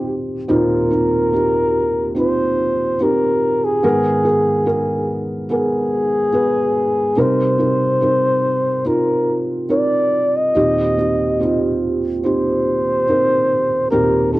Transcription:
Already playing: felt piano D#2 A#2 C4 D#4 G4, flugelhorn G4
0.48 felt piano D#2 A#2 C4 D#4 F4, flugelhorn A#4
0.90 felt piano C4 D#4 F4
1.33 felt piano C4 D#4 G4
2.15 felt piano C4 D#4 F4
2.19 flugelhorn C5
3.00 felt piano C4 D#4 G4, flugelhorn A#4
3.65 flugelhorn G#4
3.83 felt piano G#2 D#3 B3 G#4 A#4
4.24 felt piano B3 G#4 A#4
4.66 felt piano B3 G#4 A#4
5.50 felt piano B3 G#4 A#4, flugelhorn G#4
6.32 felt piano B3 G#4 B4
7.16 felt piano C3 G3 C4 D#4 A#4, flugelhorn C5
7.58 felt piano C4 D#4 A#4
8.01 felt piano C4 D#4 A#4
8.85 felt piano C4 D#4 F4, flugelhorn A#4
9.69 felt piano C4 D#4 A#4, flugelhorn D5
10.36 flugelhorn D#5
10.55 felt piano D#2 A#2 C4 D#4 G4
10.97 felt piano C4 D#4 G4
11.40 felt piano C4 D#4 F4
12.24 felt piano C4 D#4 G4, flugelhorn C5
13.08 felt piano C4 D#4 A#4
13.91 felt piano D#2 A#2 C4 D#4 G4, flugelhorn A#4
14.33 felt piano C4 D#4 G4, flugelhorn A#4

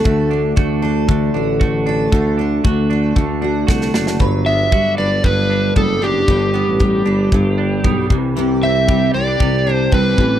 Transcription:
Already playing: steel-string acoustic guitar A3 F#4, clean electric guitar D4 F#4
0.04 tuba D2, steel-string acoustic guitar D3 A4, clean electric guitar A3, kick
0.30 clean electric guitar D4, steel-string acoustic guitar D4
0.56 tuba D2, steel-string acoustic guitar A3, clean electric guitar F#4, kick
0.82 clean electric guitar D4, steel-string acoustic guitar A4
1.08 steel-string acoustic guitar D3, clean electric guitar A3, kick
1.34 tuba A1, clean electric guitar D4, steel-string acoustic guitar F#4
1.60 steel-string acoustic guitar A3, clean electric guitar F#4, kick
1.86 clean electric guitar D4, steel-string acoustic guitar A4
2.12 tuba D2, steel-string acoustic guitar D3 A4, clean electric guitar A3, kick
2.38 clean electric guitar D4, steel-string acoustic guitar D4
2.64 tuba D2, steel-string acoustic guitar A3, clean electric guitar F#4, kick
2.90 clean electric guitar D4, steel-string acoustic guitar A4
3.16 tuba D2, steel-string acoustic guitar D3, clean electric guitar A3, kick
3.41 clean electric guitar D4, steel-string acoustic guitar F#4
3.67 tuba C2, steel-string acoustic guitar A3, clean electric guitar F#4, kick, snare
3.81 snare
3.94 tuba F#1, clean electric guitar D4, steel-string acoustic guitar A4, snare
4.07 snare
4.19 tuba G1, steel-string acoustic guitar G2 B4, clean electric guitar F#3, kick
4.46 clean electric guitar B3, steel-string acoustic guitar D4, electric slide guitar E5
4.72 steel-string acoustic guitar G3, clean electric guitar F#4, kick
4.98 tuba G1, clean electric guitar D4, steel-string acoustic guitar B4, electric slide guitar D5
5.24 tuba G1, steel-string acoustic guitar G2, electric slide guitar B4, kick
5.50 clean electric guitar D4
5.76 tuba F#1, steel-string acoustic guitar G3, clean electric guitar B3, electric slide guitar A4, kick
6.02 tuba F#1, clean electric guitar D4, steel-string acoustic guitar D4, electric slide guitar G4
6.28 tuba G1, steel-string acoustic guitar G2 B4, kick
6.54 clean electric guitar B3, steel-string acoustic guitar D4
6.67 tuba A1
6.80 steel-string acoustic guitar G3, kick
7.06 tuba G1, clean electric guitar D4, steel-string acoustic guitar B4
7.32 tuba G1, steel-string acoustic guitar G2, kick
7.58 clean electric guitar D4
7.84 tuba B1, steel-string acoustic guitar G3, clean electric guitar B3, kick
8.10 tuba C2, steel-string acoustic guitar C3, clean electric guitar E3, kick
8.36 steel-string acoustic guitar C3 G4, clean electric guitar E3
8.62 clean electric guitar C4, steel-string acoustic guitar C4, electric slide guitar E5
8.88 steel-string acoustic guitar G3, clean electric guitar G4, kick
9.14 tuba C2, clean electric guitar C4, steel-string acoustic guitar G4, electric slide guitar D5
9.27 clean electric guitar D4
9.40 tuba C2, steel-string acoustic guitar C3, clean electric guitar G4, kick
9.66 clean electric guitar D4, steel-string acoustic guitar D4
9.73 electric slide guitar C5
9.92 tuba C2, steel-string acoustic guitar G3, clean electric guitar C4, electric slide guitar B4, kick
10.18 tuba A1, steel-string acoustic guitar A2, clean electric guitar E3, kick

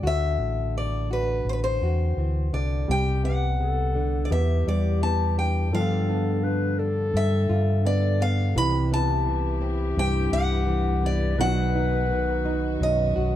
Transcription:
0.03 fingered electric bass D2, nylon-string guitar D3 F#4
0.07 steel-string acoustic guitar E5
0.38 fingered electric bass A1
0.78 steel-string acoustic guitar D5
1.11 nylon-string guitar F#4, steel-string acoustic guitar B4
1.45 fingered electric bass A1
1.49 steel-string acoustic guitar B4 C5
1.64 steel-string acoustic guitar C5
1.81 fingered electric bass E2, nylon-string guitar C4 F#4
2.17 fingered electric bass D2, nylon-string guitar E3
2.53 fingered electric bass C2, nylon-string guitar D3, steel-string acoustic guitar D5
2.87 fingered electric bass C2, nylon-string guitar C3, felt piano G3, clarinet G4, steel-string acoustic guitar G5
3.24 felt piano B3, nylon-string guitar B3, steel-string acoustic guitar F#5
3.60 nylon-string guitar C3, clarinet A4
3.95 nylon-string guitar D3
4.25 steel-string acoustic guitar D5
4.30 fingered electric bass E2, nylon-string guitar E2, felt piano B3, clarinet G4, steel-string acoustic guitar E5
4.66 fingered electric bass E2, nylon-string guitar G3, steel-string acoustic guitar D5
5.02 nylon-string guitar E3, felt piano B3, steel-string acoustic guitar A5
5.38 nylon-string guitar D4, steel-string acoustic guitar G5
5.72 fingered electric bass G2, nylon-string guitar G2 D3 B3 D4 F4, felt piano F3, clarinet A4, steel-string acoustic guitar F5
6.09 nylon-string guitar B3, felt piano D4
6.43 nylon-string guitar D3, clarinet B4
6.78 nylon-string guitar D4, clarinet A4
7.14 nylon-string guitar G2, fingered electric bass G2, steel-string acoustic guitar E5
7.49 fingered electric bass G2, nylon-string guitar F4
7.85 nylon-string guitar D3, felt piano B3, steel-string acoustic guitar D5
8.21 nylon-string guitar B3, steel-string acoustic guitar F5
8.55 fingered electric bass C2, nylon-string guitar C3, string section C3 E4 B4, felt piano E3, clarinet G4, steel-string acoustic guitar B5
8.91 nylon-string guitar B3, felt piano E4, steel-string acoustic guitar A5
9.26 nylon-string guitar E3
9.61 nylon-string guitar C4
9.96 fingered electric bass C2, nylon-string guitar G2, steel-string acoustic guitar G5
10.32 fingered electric bass C2, nylon-string guitar E4, steel-string acoustic guitar F#5
10.67 nylon-string guitar E3
11.03 nylon-string guitar B3, steel-string acoustic guitar D5
11.38 fingered electric bass B1, nylon-string guitar B2 D#3 B3 D#4 F#4, string section D#3 F#4, felt piano F#3, clarinet B4, steel-string acoustic guitar F#5
11.75 nylon-string guitar B3, felt piano D#4
12.09 nylon-string guitar D#3
12.45 nylon-string guitar D#4
12.80 fingered electric bass B1, nylon-string guitar F#2, steel-string acoustic guitar D#5
13.16 fingered electric bass B1, nylon-string guitar F#4

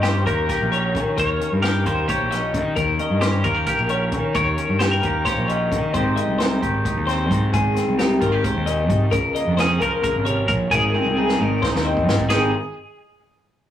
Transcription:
Already playing: fingered electric bass G2, clean electric guitar D#3 A#3 G4
0.02 clean electric guitar C#4 G4 C5, snare, closed hi-hat
0.26 fingered electric bass D#2, clean electric guitar A#3 G4 A#4, kick, closed hi-hat
0.49 clean electric guitar G4 A#4, kick, snare, closed hi-hat
0.61 fingered electric bass A#1
0.72 clean electric guitar C#4 C#5, closed hi-hat
0.94 clean electric guitar A#2, fingered electric bass D#3, kick, closed hi-hat
1.16 fingered electric bass D#2, clean electric guitar D#3 A#4 C#5, kick, closed hi-hat
1.40 clean electric guitar C#4, closed hi-hat
1.52 fingered electric bass G2
1.62 clean electric guitar G4 A#4, snare, closed hi-hat
1.84 fingered electric bass D#2, clean electric guitar A#3 G4 A#4 C5, kick, closed hi-hat
2.08 clean electric guitar G4 C5 C#5, kick, closed hi-hat
2.20 fingered electric bass A#1
2.31 clean electric guitar C#4 D#5, snare, closed hi-hat
2.54 clean electric guitar A#2, fingered electric bass D#3, kick, closed hi-hat
2.76 fingered electric bass D#2, clean electric guitar D#3 A#4, kick, closed hi-hat
2.99 clean electric guitar C#4 D#5, closed hi-hat
3.10 fingered electric bass G2
3.21 clean electric guitar C#4 G4 C5, snare, closed hi-hat
3.44 fingered electric bass D#2, clean electric guitar A#3 F4 A#4, kick, closed hi-hat
3.55 clean electric guitar G4
3.66 clean electric guitar G4 A#4, kick, snare, closed hi-hat
3.78 fingered electric bass A#1
3.89 clean electric guitar C#4 C#5, closed hi-hat
4.12 clean electric guitar A#2, fingered electric bass D#3, kick, closed hi-hat
4.34 fingered electric bass D#2, clean electric guitar D#3 A#4 C#5, kick, closed hi-hat
4.58 clean electric guitar C#4, closed hi-hat
4.69 fingered electric bass G2
4.79 clean electric guitar G4 C5, snare, closed hi-hat
4.91 clean electric guitar A#4
5.03 fingered electric bass D#2, clean electric guitar A#3 G4 A#4, kick, closed hi-hat
5.25 clean electric guitar G4 C5 C#5, kick, snare, closed hi-hat
5.37 fingered electric bass A#1
5.48 clean electric guitar C#4 D#5, closed hi-hat
5.72 clean electric guitar A#2, fingered electric bass D#3, kick, closed hi-hat
5.94 fingered electric bass G#1, clean electric guitar G#2 D#3 C4 D#4 G4 C5, kick, closed hi-hat
6.16 clean electric guitar C4 D#5, closed hi-hat
6.28 fingered electric bass C2
6.39 clean electric guitar D#4 C5, snare, closed hi-hat
6.61 fingered electric bass G#1, clean electric guitar D#3 G4, kick, closed hi-hat
6.85 clean electric guitar D#4, kick, closed hi-hat
6.96 fingered electric bass D#2
7.06 clean electric guitar C4 C5, snare, closed hi-hat
7.30 clean electric guitar G#2, fingered electric bass G#2, kick, closed hi-hat
7.52 fingered electric bass G#1, clean electric guitar G#2 G#4, kick, closed hi-hat
7.75 clean electric guitar C4, snare, closed hi-hat
7.87 fingered electric bass C2
7.98 clean electric guitar D#4 G4, snare, closed hi-hat
8.20 fingered electric bass G#1, clean electric guitar D#3 F4 A#4, kick, closed hi-hat
8.32 clean electric guitar G4
8.44 clean electric guitar G#2 C5, kick, closed hi-hat
8.56 fingered electric bass D#2
8.66 clean electric guitar A#2 D#5, closed hi-hat
8.90 fingered electric bass G#2, clean electric guitar C3, kick, closed hi-hat
9.11 fingered electric bass C#2, clean electric guitar C#3 A#4, kick, closed hi-hat
9.35 clean electric guitar A#3 D#5, closed hi-hat
9.47 fingered electric bass F2
9.57 clean electric guitar C#4 G#4 C5, snare, closed hi-hat
9.80 fingered electric bass C#2, clean electric guitar F3 F4 A#4, kick, closed hi-hat
10.02 clean electric guitar C#3 A#4, kick, closed hi-hat
10.15 fingered electric bass G#1
10.25 clean electric guitar C3 C#5, closed hi-hat
10.48 fingered electric bass A#1, clean electric guitar A#2 A#4, kick, closed hi-hat
10.70 fingered electric bass G#1, clean electric guitar G#2 G#4 A#4, kick, closed hi-hat
10.94 clean electric guitar C4, high tom
11.05 fingered electric bass C2, high tom
11.17 clean electric guitar D#4 G#4
11.29 snare
11.39 fingered electric bass G#1, clean electric guitar D#3 D#4 A#4, mid tom
11.62 clean electric guitar D#4 C5, kick, snare
11.74 fingered electric bass D#2, snare
11.85 clean electric guitar C4 D#5
11.97 kick
12.07 clean electric guitar G#2, fingered electric bass G#2, snare
12.19 kick
12.30 fingered electric bass G#1, clean electric guitar G#2 D#3 C4 D#4 G4 G#4, snare, ride bell

